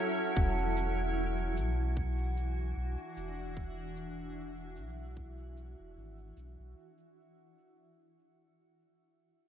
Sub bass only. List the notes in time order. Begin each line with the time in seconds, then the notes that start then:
0.36 E1
1.57 B1
2.77 B1
3.17 E1
4.77 B1
5.80 E1
5.97 G#1
6.37 B1
6.59 B1